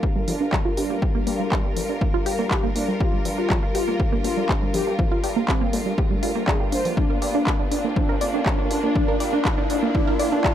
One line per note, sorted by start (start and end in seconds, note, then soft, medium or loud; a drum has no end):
0.00 6.93 G3 medium
0.00 6.96 D4 medium
0.00 0.80 F4 medium
0.00 10.54 F4 medium
0.00 8.86 G4 medium
0.00 0.09 G4 medium
0.00 6.93 A#4 medium
0.00 6.97 A#4 medium
0.00 6.97 F5 medium
0.00 kick loud
0.00 riser medium
0.16 0.24 G1 medium
0.16 0.25 G3 medium
0.28 0.37 G1 loud
0.28 0.32 F3 medium
0.28 0.54 D4 medium
0.28 open hi-hat loud
0.41 0.49 G1 medium
0.41 0.47 D4 medium
0.53 0.59 F3 loud
0.53 kick loud
0.53 clap loud
0.65 0.74 F1 medium
0.65 0.74 F4 loud
0.77 0.86 G1 loud
0.77 0.97 D4 medium
0.77 0.84 G4 medium
0.77 open hi-hat loud
0.90 0.99 G1 medium
0.90 0.96 A#3 loud
1.02 1.12 G4 medium
1.02 kick loud
1.15 1.23 G1 medium
1.15 1.21 A#3 loud
1.27 1.41 G2 medium
1.27 1.37 A#3 medium
1.27 open hi-hat loud
1.40 1.48 G1 medium
1.40 1.46 G3 medium
1.52 1.71 G3 medium
1.52 1.58 G4 loud
1.52 kick loud
1.52 clap loud
1.64 1.73 G1 medium
1.64 1.74 G3 medium
1.76 1.85 G1 loud
1.76 1.80 F3 medium
1.76 open hi-hat loud
1.89 1.98 G1 medium
1.89 1.95 D4 medium
2.01 2.08 F3 loud
2.01 kick loud
2.14 2.22 G1 medium
2.14 2.23 F4 loud
2.26 2.35 G1 medium
2.26 2.33 G4 loud
2.26 open hi-hat loud
2.39 2.47 G1 medium
2.39 2.45 A#3 loud
2.51 2.61 G4 medium
2.51 2.64 G4 medium
2.51 kick loud
2.51 clap loud
2.64 2.72 F1 medium
2.64 2.70 A#3 medium
2.76 2.85 G1 loud
2.76 2.85 A#3 medium
2.76 2.89 D4 medium
2.76 open hi-hat loud
2.88 2.97 G1 medium
2.88 2.95 G3 medium
3.00 3.20 F4 medium
3.00 3.07 G4 loud
3.00 kick loud
3.13 3.22 G1 medium
3.13 3.22 G3 medium
3.25 3.40 G2 loud
3.25 3.29 F3 medium
3.25 open hi-hat loud
3.38 3.46 G1 medium
3.38 3.44 D4 medium
3.38 3.57 F4 medium
3.50 3.57 F3 loud
3.50 kick loud
3.50 clap loud
3.63 3.71 G1 medium
3.63 3.72 F4 loud
3.75 3.84 G1 loud
3.75 4.01 F4 medium
3.75 3.81 G4 loud
3.75 open hi-hat loud
3.88 3.96 G1 medium
3.88 3.94 A#3 loud
4.00 4.09 G4 medium
4.00 kick loud
4.12 4.21 G1 medium
4.12 4.19 A#3 loud
4.24 4.33 G1 loud
4.24 4.34 A#3 medium
4.24 4.50 F4 medium
4.24 open hi-hat loud
4.37 4.46 G1 medium
4.37 4.43 G3 medium
4.49 4.56 G4 loud
4.49 kick loud
4.49 clap loud
4.62 4.70 F1 medium
4.62 4.71 G3 medium
4.74 4.83 G1 loud
4.74 4.78 F3 medium
4.74 4.94 G4 medium
4.74 open hi-hat loud
4.87 4.95 G1 medium
4.87 4.93 D4 medium
4.99 5.05 F3 loud
4.99 kick loud
5.12 5.20 G1 medium
5.12 5.21 F4 loud
5.24 5.38 G2 loud
5.24 5.30 G4 loud
5.24 open hi-hat loud
5.36 5.45 G1 medium
5.36 5.42 A#3 loud
5.48 5.68 C4 medium
5.48 5.58 G4 medium
5.48 kick loud
5.48 clap loud
5.61 5.70 G1 medium
5.61 5.67 A#3 loud
5.73 5.82 G1 loud
5.73 5.83 A#3 medium
5.73 open hi-hat loud
5.86 5.94 G1 medium
5.86 5.92 G3 medium
5.98 6.04 G4 loud
5.98 kick loud
6.11 6.19 G1 medium
6.11 6.20 G3 medium
6.23 6.32 G1 loud
6.23 6.29 F4 loud
6.23 open hi-hat loud
6.36 6.44 G1 medium
6.36 6.45 A#3 loud
6.48 6.57 D4 loud
6.48 6.61 G#4 medium
6.48 kick loud
6.48 clap loud
6.60 6.74 G2 medium
6.60 6.66 G4 medium
6.72 6.81 G1 loud
6.72 6.79 D4 medium
6.72 6.86 C5 medium
6.72 open hi-hat loud
6.85 6.94 G1 medium
6.85 6.91 F3 medium
6.85 open hi-hat medium
6.97 7.04 F3 loud
6.97 10.54 A#3 medium
6.97 7.17 D4 medium
6.97 10.54 D4 medium
6.97 kick loud
7.10 7.18 G1 medium
7.10 7.19 A#4 medium
7.20 7.36 G2 loud
7.20 7.28 D5 medium
7.20 10.54 F5 medium
7.20 open hi-hat loud
7.32 7.43 G1 medium
7.32 7.54 D4 medium
7.32 7.41 D4 medium
7.32 10.54 F4 medium
7.45 10.54 A#4 medium
7.45 7.56 D5 medium
7.45 kick loud
7.45 clap loud
7.60 7.68 G1 medium
7.60 7.66 D4 medium
7.71 7.80 G1 loud
7.71 7.81 D4 medium
7.71 7.94 D4 medium
7.71 open hi-hat loud
7.84 7.93 G1 medium
7.84 7.90 A#3 medium
7.96 8.03 F3 medium
7.96 8.16 D4 medium
7.96 kick loud
8.09 8.18 G1 medium
8.09 8.18 A#4 loud
8.21 8.30 G1 loud
8.21 8.28 D5 loud
8.21 open hi-hat loud
8.34 8.42 G1 medium
8.34 8.40 D4 medium
8.34 8.53 D4 medium
8.46 8.56 D5 medium
8.46 kick loud
8.46 clap loud
8.59 8.67 F1 medium
8.59 8.65 D4 medium
8.71 8.80 G1 loud
8.71 8.80 D4 medium
8.71 8.94 D4 medium
8.71 open hi-hat loud
8.83 8.92 G1 medium
8.83 8.90 A#3 medium
8.95 9.02 F3 loud
8.95 9.15 D4 medium
8.95 kick loud
9.08 9.17 G1 medium
9.08 9.17 A#4 medium
9.20 9.35 G2 medium
9.20 9.27 D5 loud
9.20 open hi-hat loud
9.33 9.41 G1 medium
9.33 9.39 D4 loud
9.33 9.52 D4 medium
9.45 9.55 D5 medium
9.45 kick loud
9.45 clap loud
9.58 9.66 G1 medium
9.58 9.64 D4 loud
9.70 9.79 G1 loud
9.70 9.80 D4 medium
9.70 9.93 D4 medium
9.70 open hi-hat loud
9.83 9.91 G1 medium
9.83 9.89 A#3 medium
9.95 10.01 F3 loud
9.95 10.14 D4 loud
9.95 kick loud
10.07 10.16 G1 medium
10.07 10.17 A#4 loud
10.20 10.28 G1 loud
10.20 10.26 D5 loud
10.20 open hi-hat loud
10.32 10.41 G1 medium
10.32 10.51 D4 medium
10.32 10.38 D4 loud
10.44 10.54 D5 medium
10.44 kick loud
10.44 clap loud